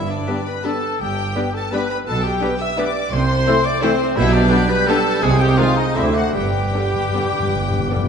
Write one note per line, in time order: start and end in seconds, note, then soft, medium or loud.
0.00 0.22 G1 medium
0.00 0.22 G2 medium
0.00 0.43 G2 loud
0.10 0.46 D4 medium
0.10 0.47 D5 loud
0.27 0.41 G3 medium
0.27 0.36 G3 medium
0.27 0.36 B3 medium
0.27 0.43 B3 medium
0.27 0.36 D4 medium
0.27 0.42 G4 medium
0.27 0.41 B4 medium
0.27 0.35 D6 medium
0.46 0.65 B4 medium
0.46 0.66 B4 medium
0.46 0.65 B5 loud
0.64 0.77 G3 medium
0.64 0.73 G3 medium
0.64 0.72 B3 medium
0.64 0.78 B3 medium
0.64 0.73 D4 medium
0.64 0.78 G4 medium
0.64 0.99 A4 loud
0.64 1.02 A4 medium
0.64 0.77 B4 medium
0.64 1.00 A5 loud
0.64 0.72 D6 medium
1.00 1.29 G1 medium
1.00 1.30 G2 medium
1.00 1.54 G4 loud
1.00 1.55 G4 loud
1.00 1.54 G5 loud
1.35 1.49 G3 medium
1.35 1.44 G3 medium
1.35 1.49 B3 medium
1.35 1.44 B3 medium
1.35 1.44 D4 medium
1.35 1.49 G4 medium
1.35 1.49 B4 medium
1.35 1.43 D6 medium
1.54 1.73 A4 loud
1.54 1.63 A4 medium
1.54 1.73 A5 loud
1.71 1.80 G3 medium
1.71 1.85 G3 medium
1.71 1.80 B3 medium
1.71 1.85 B3 medium
1.71 1.81 D4 medium
1.71 1.85 G4 medium
1.71 1.89 B4 loud
1.71 1.88 B4 loud
1.71 1.86 B4 medium
1.71 1.89 B5 loud
1.71 1.79 D6 medium
1.90 1.97 B4 loud
1.90 1.98 B4 loud
1.90 1.97 B5 loud
2.06 2.36 B1 loud
2.06 2.35 B2 medium
2.06 2.24 A4 loud
2.06 2.25 A4 loud
2.06 2.24 A5 loud
2.23 2.59 G4 loud
2.23 2.60 G4 loud
2.23 2.60 G5 loud
2.41 2.50 G3 medium
2.41 2.50 B3 medium
2.41 2.55 B3 medium
2.41 2.56 B3 medium
2.41 2.50 D4 medium
2.41 2.56 G4 medium
2.41 2.55 B4 medium
2.41 2.49 D6 medium
2.60 2.78 E5 loud
2.60 2.70 E5 loud
2.60 2.79 E6 loud
2.78 2.86 G3 medium
2.78 2.90 B3 medium
2.78 2.86 B3 medium
2.78 2.91 B3 medium
2.78 2.86 D4 medium
2.78 2.91 G4 medium
2.78 2.91 B4 medium
2.78 3.12 D5 loud
2.78 3.14 D5 loud
2.78 3.13 D6 loud
2.78 2.85 D6 medium
3.12 3.41 C2 loud
3.12 3.41 C3 loud
3.12 3.65 C5 loud
3.12 3.67 C5 loud
3.12 3.65 C6 loud
3.47 3.55 E3 medium
3.47 3.60 A3 medium
3.47 3.56 A3 loud
3.47 3.55 C4 medium
3.47 3.61 C4 medium
3.47 3.55 E4 medium
3.47 3.61 A4 medium
3.47 3.61 C5 medium
3.47 3.54 E6 medium
3.64 3.83 D5 loud
3.64 3.85 D5 loud
3.64 3.82 D6 loud
3.81 3.91 E3 loud
3.81 3.91 A3 loud
3.81 3.95 A3 loud
3.81 3.94 C4 loud
3.81 4.17 C4 loud
3.81 3.90 C4 loud
3.81 4.18 C4 loud
3.81 3.90 E4 loud
3.81 3.94 A4 loud
3.81 4.16 C5 loud
3.81 3.96 C5 medium
3.81 3.91 E6 loud
4.16 4.46 B1 loud
4.16 4.46 B2 loud
4.16 5.23 G3 loud
4.16 4.34 E4 loud
4.16 4.33 E4 loud
4.16 5.25 B4 loud
4.16 4.33 E5 loud
4.16 5.19 G6 loud
4.33 4.70 D4 loud
4.33 4.72 D4 loud
4.33 4.70 D5 loud
4.50 4.59 G3 loud
4.50 4.58 B3 medium
4.50 4.65 B3 loud
4.50 4.59 D4 medium
4.50 4.65 G4 loud
4.69 4.88 B4 loud
4.69 4.87 B4 loud
4.69 4.89 B5 loud
4.87 4.96 G3 loud
4.87 4.96 B3 loud
4.87 5.01 B3 loud
4.87 4.96 D4 loud
4.87 5.01 G4 loud
4.87 5.23 A4 loud
4.87 5.22 A4 loud
4.87 5.22 A5 loud
5.22 5.52 C2 loud
5.22 5.52 C3 loud
5.22 5.98 G#3 loud
5.22 5.40 G#4 loud
5.22 5.30 G#4 loud
5.22 5.96 C5 loud
5.22 5.40 G#5 loud
5.22 5.97 D#6 loud
5.39 5.58 G4 loud
5.39 5.59 G4 loud
5.39 5.58 G5 loud
5.57 5.66 D#3 medium
5.57 5.66 G#3 loud
5.57 5.65 C4 medium
5.57 5.71 C4 medium
5.57 5.71 D#4 medium
5.57 5.65 D#4 medium
5.57 5.76 F4 loud
5.57 5.78 F4 loud
5.57 5.78 F5 loud
5.76 5.86 D#4 loud
5.76 5.97 D#4 loud
5.76 5.96 D#5 loud
5.95 6.28 D2 loud
5.95 6.28 D2 medium
5.95 6.05 D3 medium
5.95 6.34 A3 loud
5.95 6.05 A3 medium
5.95 6.09 C4 medium
5.95 6.05 C4 medium
5.95 6.09 D4 medium
5.95 6.05 D4 medium
5.95 6.15 E4 medium
5.95 6.16 E4 loud
5.95 6.36 C5 medium
5.95 6.16 E5 loud
5.95 6.34 D6 medium
6.13 6.33 F#4 loud
6.13 6.35 F#4 medium
6.13 6.34 F#5 loud
6.34 6.67 G1 medium
6.34 6.67 G2 medium
6.34 6.42 G2 soft
6.34 8.08 G3 medium
6.34 8.08 G4 loud
6.34 8.08 G4 medium
6.34 8.08 B4 medium
6.34 8.08 G5 loud
6.34 8.05 D6 medium
6.44 6.51 G2 soft
6.52 6.59 G2 soft
6.61 6.67 G2 soft
6.69 6.75 G2 medium
6.69 6.87 D4 medium
6.73 6.83 G2 soft
6.73 6.82 D3 medium
6.73 6.82 G3 medium
6.73 6.88 B3 medium
6.73 6.82 B3 medium
6.73 6.81 D4 medium
6.85 6.92 G2 soft
6.93 7.00 G2 medium
7.02 7.08 G2 medium
7.09 7.17 G2 medium
7.09 7.27 B3 medium
7.09 7.21 D4 medium
7.09 7.27 D4 medium
7.14 7.22 D3 medium
7.14 7.22 G3 medium
7.14 7.22 B3 medium
7.18 7.24 G2 medium
7.25 7.31 G2 medium
7.33 7.39 G2 medium
7.40 7.46 G2 medium
7.47 7.54 G2 medium
7.52 7.83 G1 medium
7.52 7.83 G2 medium
7.52 7.61 G2 medium
7.62 7.70 G2 medium
7.71 7.77 G2 medium
7.78 7.86 G2 medium
7.87 7.95 G2 medium
7.87 7.97 B3 medium
7.87 8.04 B3 medium
7.87 8.04 D4 medium
7.87 7.98 D4 medium
7.91 7.99 D3 medium
7.91 8.00 G3 medium
7.96 8.03 G2 medium
8.04 8.08 G2 loud